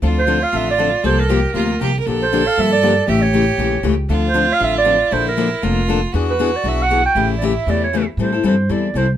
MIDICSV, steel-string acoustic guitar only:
0, 0, Header, 1, 2, 480
1, 0, Start_track
1, 0, Key_signature, -1, "minor"
1, 0, Tempo, 255211
1, 43, Time_signature, 4, 2, 24, 8
1, 17254, End_track
2, 0, Start_track
2, 0, Title_t, "Steel-string acoustic guitar"
2, 0, Program_c, 0, 25
2, 40, Note_on_c, 0, 50, 60
2, 48, Note_on_c, 0, 53, 65
2, 52, Note_on_c, 0, 60, 72
2, 62, Note_on_c, 0, 69, 73
2, 63, Note_on_c, 0, 62, 74
2, 376, Note_off_c, 0, 50, 0
2, 380, Note_off_c, 0, 53, 0
2, 382, Note_off_c, 0, 60, 0
2, 387, Note_off_c, 0, 69, 0
2, 388, Note_off_c, 0, 62, 0
2, 504, Note_on_c, 0, 50, 83
2, 510, Note_on_c, 0, 53, 87
2, 522, Note_on_c, 0, 60, 90
2, 525, Note_on_c, 0, 62, 89
2, 526, Note_on_c, 0, 69, 89
2, 698, Note_off_c, 0, 50, 0
2, 701, Note_off_c, 0, 53, 0
2, 707, Note_off_c, 0, 60, 0
2, 709, Note_off_c, 0, 62, 0
2, 709, Note_off_c, 0, 69, 0
2, 987, Note_on_c, 0, 50, 65
2, 994, Note_on_c, 0, 53, 64
2, 999, Note_on_c, 0, 60, 72
2, 1009, Note_on_c, 0, 62, 77
2, 1011, Note_on_c, 0, 69, 67
2, 1327, Note_off_c, 0, 50, 0
2, 1331, Note_off_c, 0, 53, 0
2, 1334, Note_off_c, 0, 60, 0
2, 1339, Note_off_c, 0, 62, 0
2, 1340, Note_off_c, 0, 69, 0
2, 1470, Note_on_c, 0, 50, 88
2, 1480, Note_on_c, 0, 53, 77
2, 1481, Note_on_c, 0, 60, 79
2, 1493, Note_on_c, 0, 62, 84
2, 1495, Note_on_c, 0, 69, 92
2, 1659, Note_off_c, 0, 50, 0
2, 1664, Note_off_c, 0, 53, 0
2, 1665, Note_off_c, 0, 60, 0
2, 1671, Note_off_c, 0, 62, 0
2, 1671, Note_off_c, 0, 69, 0
2, 1945, Note_on_c, 0, 48, 63
2, 1954, Note_on_c, 0, 53, 71
2, 1957, Note_on_c, 0, 58, 70
2, 1964, Note_on_c, 0, 65, 73
2, 1974, Note_on_c, 0, 67, 76
2, 2285, Note_off_c, 0, 48, 0
2, 2289, Note_off_c, 0, 53, 0
2, 2290, Note_off_c, 0, 58, 0
2, 2294, Note_off_c, 0, 65, 0
2, 2299, Note_off_c, 0, 67, 0
2, 2420, Note_on_c, 0, 48, 80
2, 2432, Note_on_c, 0, 53, 85
2, 2442, Note_on_c, 0, 58, 91
2, 2447, Note_on_c, 0, 67, 92
2, 2449, Note_on_c, 0, 65, 93
2, 2613, Note_off_c, 0, 48, 0
2, 2618, Note_off_c, 0, 53, 0
2, 2624, Note_off_c, 0, 58, 0
2, 2626, Note_off_c, 0, 67, 0
2, 2627, Note_off_c, 0, 65, 0
2, 2905, Note_on_c, 0, 48, 68
2, 2912, Note_on_c, 0, 53, 63
2, 2915, Note_on_c, 0, 58, 65
2, 2926, Note_on_c, 0, 65, 68
2, 2930, Note_on_c, 0, 67, 67
2, 3243, Note_off_c, 0, 48, 0
2, 3247, Note_off_c, 0, 53, 0
2, 3248, Note_off_c, 0, 58, 0
2, 3253, Note_off_c, 0, 65, 0
2, 3255, Note_off_c, 0, 67, 0
2, 3403, Note_on_c, 0, 48, 79
2, 3404, Note_on_c, 0, 53, 79
2, 3411, Note_on_c, 0, 58, 83
2, 3417, Note_on_c, 0, 65, 78
2, 3418, Note_on_c, 0, 67, 84
2, 3582, Note_off_c, 0, 48, 0
2, 3583, Note_off_c, 0, 53, 0
2, 3586, Note_off_c, 0, 58, 0
2, 3590, Note_off_c, 0, 65, 0
2, 3590, Note_off_c, 0, 67, 0
2, 3885, Note_on_c, 0, 50, 71
2, 3890, Note_on_c, 0, 53, 62
2, 3892, Note_on_c, 0, 58, 66
2, 3899, Note_on_c, 0, 62, 67
2, 3914, Note_on_c, 0, 67, 74
2, 4212, Note_off_c, 0, 50, 0
2, 4214, Note_off_c, 0, 53, 0
2, 4215, Note_off_c, 0, 58, 0
2, 4219, Note_off_c, 0, 62, 0
2, 4226, Note_off_c, 0, 67, 0
2, 4372, Note_on_c, 0, 50, 82
2, 4378, Note_on_c, 0, 53, 89
2, 4381, Note_on_c, 0, 58, 90
2, 4385, Note_on_c, 0, 62, 98
2, 4392, Note_on_c, 0, 67, 100
2, 4546, Note_off_c, 0, 50, 0
2, 4549, Note_off_c, 0, 53, 0
2, 4550, Note_off_c, 0, 58, 0
2, 4552, Note_off_c, 0, 62, 0
2, 4556, Note_off_c, 0, 67, 0
2, 4839, Note_on_c, 0, 50, 67
2, 4849, Note_on_c, 0, 53, 62
2, 4850, Note_on_c, 0, 58, 69
2, 4861, Note_on_c, 0, 62, 68
2, 4865, Note_on_c, 0, 67, 72
2, 5168, Note_off_c, 0, 50, 0
2, 5173, Note_off_c, 0, 53, 0
2, 5173, Note_off_c, 0, 58, 0
2, 5179, Note_off_c, 0, 62, 0
2, 5181, Note_off_c, 0, 67, 0
2, 5316, Note_on_c, 0, 50, 83
2, 5320, Note_on_c, 0, 53, 83
2, 5326, Note_on_c, 0, 58, 89
2, 5331, Note_on_c, 0, 62, 81
2, 5336, Note_on_c, 0, 67, 99
2, 5497, Note_off_c, 0, 50, 0
2, 5499, Note_off_c, 0, 53, 0
2, 5502, Note_off_c, 0, 58, 0
2, 5504, Note_off_c, 0, 62, 0
2, 5507, Note_off_c, 0, 67, 0
2, 5780, Note_on_c, 0, 49, 63
2, 5793, Note_on_c, 0, 52, 68
2, 5799, Note_on_c, 0, 57, 73
2, 5805, Note_on_c, 0, 61, 78
2, 5813, Note_on_c, 0, 67, 75
2, 6118, Note_off_c, 0, 49, 0
2, 6124, Note_off_c, 0, 52, 0
2, 6127, Note_off_c, 0, 57, 0
2, 6130, Note_off_c, 0, 61, 0
2, 6134, Note_off_c, 0, 67, 0
2, 6263, Note_on_c, 0, 49, 76
2, 6274, Note_on_c, 0, 52, 92
2, 6278, Note_on_c, 0, 57, 88
2, 6288, Note_on_c, 0, 67, 85
2, 6290, Note_on_c, 0, 61, 93
2, 6450, Note_off_c, 0, 49, 0
2, 6455, Note_off_c, 0, 52, 0
2, 6458, Note_off_c, 0, 57, 0
2, 6462, Note_off_c, 0, 67, 0
2, 6464, Note_off_c, 0, 61, 0
2, 6745, Note_on_c, 0, 49, 68
2, 6751, Note_on_c, 0, 52, 70
2, 6759, Note_on_c, 0, 57, 71
2, 6761, Note_on_c, 0, 67, 67
2, 6766, Note_on_c, 0, 61, 65
2, 7080, Note_off_c, 0, 49, 0
2, 7083, Note_off_c, 0, 52, 0
2, 7087, Note_off_c, 0, 57, 0
2, 7088, Note_off_c, 0, 67, 0
2, 7091, Note_off_c, 0, 61, 0
2, 7206, Note_on_c, 0, 49, 75
2, 7212, Note_on_c, 0, 52, 86
2, 7224, Note_on_c, 0, 57, 88
2, 7229, Note_on_c, 0, 61, 86
2, 7231, Note_on_c, 0, 67, 91
2, 7401, Note_off_c, 0, 49, 0
2, 7404, Note_off_c, 0, 52, 0
2, 7410, Note_off_c, 0, 57, 0
2, 7413, Note_off_c, 0, 61, 0
2, 7414, Note_off_c, 0, 67, 0
2, 7701, Note_on_c, 0, 50, 69
2, 7703, Note_on_c, 0, 53, 59
2, 7705, Note_on_c, 0, 60, 67
2, 7713, Note_on_c, 0, 62, 69
2, 7717, Note_on_c, 0, 69, 81
2, 8038, Note_off_c, 0, 50, 0
2, 8039, Note_off_c, 0, 53, 0
2, 8040, Note_off_c, 0, 60, 0
2, 8044, Note_off_c, 0, 62, 0
2, 8046, Note_off_c, 0, 69, 0
2, 8162, Note_on_c, 0, 50, 88
2, 8168, Note_on_c, 0, 53, 91
2, 8181, Note_on_c, 0, 62, 91
2, 8182, Note_on_c, 0, 60, 86
2, 8188, Note_on_c, 0, 69, 94
2, 8359, Note_off_c, 0, 50, 0
2, 8362, Note_off_c, 0, 53, 0
2, 8369, Note_off_c, 0, 60, 0
2, 8369, Note_off_c, 0, 62, 0
2, 8372, Note_off_c, 0, 69, 0
2, 8648, Note_on_c, 0, 50, 66
2, 8655, Note_on_c, 0, 60, 69
2, 8656, Note_on_c, 0, 53, 70
2, 8668, Note_on_c, 0, 62, 71
2, 8674, Note_on_c, 0, 69, 75
2, 8992, Note_off_c, 0, 50, 0
2, 8995, Note_off_c, 0, 60, 0
2, 8996, Note_off_c, 0, 53, 0
2, 9002, Note_off_c, 0, 62, 0
2, 9005, Note_off_c, 0, 69, 0
2, 9115, Note_on_c, 0, 50, 85
2, 9127, Note_on_c, 0, 60, 81
2, 9128, Note_on_c, 0, 53, 77
2, 9132, Note_on_c, 0, 62, 86
2, 9136, Note_on_c, 0, 69, 88
2, 9316, Note_off_c, 0, 50, 0
2, 9322, Note_off_c, 0, 60, 0
2, 9323, Note_off_c, 0, 53, 0
2, 9324, Note_off_c, 0, 62, 0
2, 9326, Note_off_c, 0, 69, 0
2, 9611, Note_on_c, 0, 50, 71
2, 9621, Note_on_c, 0, 53, 68
2, 9629, Note_on_c, 0, 58, 77
2, 9636, Note_on_c, 0, 62, 68
2, 9640, Note_on_c, 0, 69, 75
2, 9954, Note_off_c, 0, 50, 0
2, 9959, Note_off_c, 0, 53, 0
2, 9963, Note_off_c, 0, 58, 0
2, 9966, Note_off_c, 0, 62, 0
2, 9968, Note_off_c, 0, 69, 0
2, 10102, Note_on_c, 0, 50, 89
2, 10107, Note_on_c, 0, 53, 89
2, 10109, Note_on_c, 0, 58, 90
2, 10116, Note_on_c, 0, 62, 93
2, 10120, Note_on_c, 0, 69, 98
2, 10290, Note_off_c, 0, 50, 0
2, 10292, Note_off_c, 0, 53, 0
2, 10293, Note_off_c, 0, 58, 0
2, 10297, Note_off_c, 0, 62, 0
2, 10299, Note_off_c, 0, 69, 0
2, 10576, Note_on_c, 0, 50, 68
2, 10580, Note_on_c, 0, 53, 71
2, 10589, Note_on_c, 0, 58, 76
2, 10597, Note_on_c, 0, 62, 68
2, 10602, Note_on_c, 0, 69, 79
2, 10917, Note_off_c, 0, 50, 0
2, 10919, Note_off_c, 0, 53, 0
2, 10923, Note_off_c, 0, 58, 0
2, 10927, Note_off_c, 0, 62, 0
2, 10930, Note_off_c, 0, 69, 0
2, 11064, Note_on_c, 0, 50, 81
2, 11064, Note_on_c, 0, 53, 90
2, 11077, Note_on_c, 0, 58, 80
2, 11088, Note_on_c, 0, 62, 85
2, 11090, Note_on_c, 0, 69, 94
2, 11251, Note_off_c, 0, 50, 0
2, 11251, Note_off_c, 0, 53, 0
2, 11258, Note_off_c, 0, 58, 0
2, 11263, Note_off_c, 0, 62, 0
2, 11264, Note_off_c, 0, 69, 0
2, 11540, Note_on_c, 0, 52, 68
2, 11548, Note_on_c, 0, 59, 74
2, 11561, Note_on_c, 0, 62, 74
2, 11568, Note_on_c, 0, 68, 76
2, 11879, Note_off_c, 0, 52, 0
2, 11883, Note_off_c, 0, 59, 0
2, 11890, Note_off_c, 0, 62, 0
2, 11893, Note_off_c, 0, 68, 0
2, 12019, Note_on_c, 0, 52, 89
2, 12031, Note_on_c, 0, 59, 87
2, 12031, Note_on_c, 0, 62, 98
2, 12044, Note_on_c, 0, 68, 101
2, 12209, Note_off_c, 0, 52, 0
2, 12215, Note_off_c, 0, 59, 0
2, 12215, Note_off_c, 0, 62, 0
2, 12222, Note_off_c, 0, 68, 0
2, 12494, Note_on_c, 0, 52, 65
2, 12504, Note_on_c, 0, 59, 64
2, 12514, Note_on_c, 0, 62, 71
2, 12521, Note_on_c, 0, 68, 71
2, 12837, Note_off_c, 0, 52, 0
2, 12842, Note_off_c, 0, 59, 0
2, 12847, Note_off_c, 0, 62, 0
2, 12851, Note_off_c, 0, 68, 0
2, 12981, Note_on_c, 0, 52, 83
2, 12992, Note_on_c, 0, 59, 88
2, 12995, Note_on_c, 0, 62, 87
2, 13000, Note_on_c, 0, 68, 91
2, 13171, Note_off_c, 0, 52, 0
2, 13177, Note_off_c, 0, 59, 0
2, 13178, Note_off_c, 0, 62, 0
2, 13181, Note_off_c, 0, 68, 0
2, 13461, Note_on_c, 0, 49, 68
2, 13473, Note_on_c, 0, 52, 74
2, 13476, Note_on_c, 0, 57, 74
2, 13488, Note_on_c, 0, 61, 68
2, 13488, Note_on_c, 0, 67, 78
2, 13801, Note_off_c, 0, 49, 0
2, 13808, Note_off_c, 0, 52, 0
2, 13809, Note_off_c, 0, 57, 0
2, 13815, Note_off_c, 0, 61, 0
2, 13815, Note_off_c, 0, 67, 0
2, 13949, Note_on_c, 0, 49, 85
2, 13957, Note_on_c, 0, 52, 83
2, 13961, Note_on_c, 0, 57, 87
2, 13975, Note_on_c, 0, 61, 85
2, 13982, Note_on_c, 0, 67, 99
2, 14136, Note_off_c, 0, 49, 0
2, 14140, Note_off_c, 0, 52, 0
2, 14142, Note_off_c, 0, 57, 0
2, 14149, Note_off_c, 0, 61, 0
2, 14153, Note_off_c, 0, 67, 0
2, 14436, Note_on_c, 0, 49, 62
2, 14443, Note_on_c, 0, 52, 62
2, 14451, Note_on_c, 0, 57, 70
2, 14454, Note_on_c, 0, 61, 66
2, 14458, Note_on_c, 0, 67, 80
2, 14771, Note_off_c, 0, 49, 0
2, 14774, Note_off_c, 0, 52, 0
2, 14778, Note_off_c, 0, 57, 0
2, 14779, Note_off_c, 0, 61, 0
2, 14781, Note_off_c, 0, 67, 0
2, 14920, Note_on_c, 0, 49, 81
2, 14929, Note_on_c, 0, 52, 82
2, 14940, Note_on_c, 0, 57, 82
2, 14951, Note_on_c, 0, 61, 92
2, 14953, Note_on_c, 0, 67, 92
2, 15103, Note_off_c, 0, 49, 0
2, 15108, Note_off_c, 0, 52, 0
2, 15113, Note_off_c, 0, 57, 0
2, 15119, Note_off_c, 0, 61, 0
2, 15120, Note_off_c, 0, 67, 0
2, 15403, Note_on_c, 0, 55, 65
2, 15406, Note_on_c, 0, 52, 60
2, 15415, Note_on_c, 0, 64, 67
2, 15416, Note_on_c, 0, 60, 64
2, 15431, Note_on_c, 0, 69, 71
2, 15632, Note_off_c, 0, 69, 0
2, 15653, Note_off_c, 0, 55, 0
2, 15654, Note_off_c, 0, 52, 0
2, 15655, Note_on_c, 0, 69, 58
2, 15659, Note_off_c, 0, 60, 0
2, 15659, Note_off_c, 0, 64, 0
2, 15680, Note_on_c, 0, 64, 53
2, 15698, Note_on_c, 0, 60, 45
2, 15859, Note_off_c, 0, 60, 0
2, 15864, Note_on_c, 0, 52, 83
2, 15865, Note_off_c, 0, 64, 0
2, 15866, Note_off_c, 0, 69, 0
2, 15876, Note_on_c, 0, 55, 74
2, 15882, Note_on_c, 0, 60, 83
2, 15887, Note_on_c, 0, 64, 85
2, 15896, Note_on_c, 0, 69, 84
2, 16057, Note_off_c, 0, 52, 0
2, 16063, Note_off_c, 0, 55, 0
2, 16066, Note_off_c, 0, 60, 0
2, 16069, Note_off_c, 0, 64, 0
2, 16073, Note_off_c, 0, 69, 0
2, 16352, Note_on_c, 0, 52, 59
2, 16352, Note_on_c, 0, 55, 67
2, 16361, Note_on_c, 0, 60, 65
2, 16369, Note_on_c, 0, 64, 74
2, 16372, Note_on_c, 0, 69, 67
2, 16692, Note_off_c, 0, 55, 0
2, 16693, Note_off_c, 0, 52, 0
2, 16697, Note_off_c, 0, 60, 0
2, 16701, Note_off_c, 0, 64, 0
2, 16702, Note_off_c, 0, 69, 0
2, 16834, Note_on_c, 0, 52, 75
2, 16843, Note_on_c, 0, 55, 74
2, 16851, Note_on_c, 0, 60, 83
2, 16856, Note_on_c, 0, 69, 84
2, 16857, Note_on_c, 0, 64, 91
2, 17024, Note_off_c, 0, 52, 0
2, 17029, Note_off_c, 0, 55, 0
2, 17033, Note_off_c, 0, 60, 0
2, 17035, Note_off_c, 0, 69, 0
2, 17036, Note_off_c, 0, 64, 0
2, 17254, End_track
0, 0, End_of_file